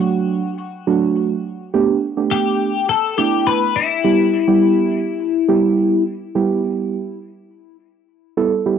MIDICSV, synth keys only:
0, 0, Header, 1, 2, 480
1, 0, Start_track
1, 0, Key_signature, 1, "minor"
1, 0, Tempo, 576923
1, 1444, Time_signature, 4, 2, 24, 8
1, 7310, End_track
2, 0, Start_track
2, 0, Title_t, "Synth keys"
2, 0, Program_c, 0, 88
2, 0, Note_on_c, 0, 54, 77
2, 0, Note_on_c, 0, 57, 71
2, 0, Note_on_c, 0, 62, 72
2, 0, Note_on_c, 0, 66, 83
2, 332, Note_off_c, 0, 54, 0
2, 332, Note_off_c, 0, 57, 0
2, 332, Note_off_c, 0, 62, 0
2, 332, Note_off_c, 0, 66, 0
2, 725, Note_on_c, 0, 54, 87
2, 725, Note_on_c, 0, 57, 86
2, 725, Note_on_c, 0, 62, 83
2, 725, Note_on_c, 0, 66, 101
2, 1108, Note_off_c, 0, 54, 0
2, 1108, Note_off_c, 0, 57, 0
2, 1108, Note_off_c, 0, 62, 0
2, 1108, Note_off_c, 0, 66, 0
2, 1445, Note_on_c, 0, 57, 90
2, 1445, Note_on_c, 0, 59, 83
2, 1445, Note_on_c, 0, 62, 82
2, 1445, Note_on_c, 0, 67, 102
2, 1636, Note_off_c, 0, 57, 0
2, 1636, Note_off_c, 0, 59, 0
2, 1636, Note_off_c, 0, 62, 0
2, 1637, Note_off_c, 0, 67, 0
2, 1805, Note_on_c, 0, 57, 76
2, 1805, Note_on_c, 0, 59, 69
2, 1805, Note_on_c, 0, 62, 71
2, 1805, Note_on_c, 0, 67, 81
2, 2252, Note_off_c, 0, 57, 0
2, 2252, Note_off_c, 0, 59, 0
2, 2252, Note_off_c, 0, 62, 0
2, 2252, Note_off_c, 0, 67, 0
2, 2645, Note_on_c, 0, 57, 75
2, 2645, Note_on_c, 0, 59, 71
2, 2645, Note_on_c, 0, 62, 71
2, 2645, Note_on_c, 0, 64, 85
2, 3028, Note_off_c, 0, 57, 0
2, 3028, Note_off_c, 0, 59, 0
2, 3028, Note_off_c, 0, 62, 0
2, 3028, Note_off_c, 0, 64, 0
2, 3365, Note_on_c, 0, 55, 76
2, 3365, Note_on_c, 0, 59, 70
2, 3365, Note_on_c, 0, 64, 70
2, 3365, Note_on_c, 0, 67, 87
2, 3556, Note_off_c, 0, 55, 0
2, 3556, Note_off_c, 0, 59, 0
2, 3556, Note_off_c, 0, 64, 0
2, 3556, Note_off_c, 0, 67, 0
2, 3725, Note_on_c, 0, 55, 92
2, 3725, Note_on_c, 0, 64, 82
2, 3725, Note_on_c, 0, 67, 96
2, 3726, Note_on_c, 0, 59, 82
2, 4172, Note_off_c, 0, 55, 0
2, 4172, Note_off_c, 0, 59, 0
2, 4172, Note_off_c, 0, 64, 0
2, 4172, Note_off_c, 0, 67, 0
2, 4564, Note_on_c, 0, 55, 90
2, 4564, Note_on_c, 0, 59, 79
2, 4564, Note_on_c, 0, 64, 82
2, 4564, Note_on_c, 0, 67, 97
2, 4948, Note_off_c, 0, 55, 0
2, 4948, Note_off_c, 0, 59, 0
2, 4948, Note_off_c, 0, 64, 0
2, 4948, Note_off_c, 0, 67, 0
2, 5285, Note_on_c, 0, 55, 89
2, 5285, Note_on_c, 0, 59, 82
2, 5285, Note_on_c, 0, 64, 82
2, 5285, Note_on_c, 0, 67, 97
2, 5796, Note_off_c, 0, 55, 0
2, 5796, Note_off_c, 0, 59, 0
2, 5796, Note_off_c, 0, 64, 0
2, 5796, Note_off_c, 0, 67, 0
2, 6965, Note_on_c, 0, 55, 85
2, 6965, Note_on_c, 0, 59, 79
2, 6965, Note_on_c, 0, 64, 80
2, 6965, Note_on_c, 0, 69, 95
2, 7092, Note_off_c, 0, 55, 0
2, 7092, Note_off_c, 0, 59, 0
2, 7092, Note_off_c, 0, 64, 0
2, 7093, Note_off_c, 0, 69, 0
2, 7205, Note_on_c, 0, 55, 87
2, 7205, Note_on_c, 0, 59, 80
2, 7205, Note_on_c, 0, 64, 83
2, 7205, Note_on_c, 0, 67, 96
2, 7310, Note_off_c, 0, 55, 0
2, 7310, Note_off_c, 0, 59, 0
2, 7310, Note_off_c, 0, 64, 0
2, 7310, Note_off_c, 0, 67, 0
2, 7310, End_track
0, 0, End_of_file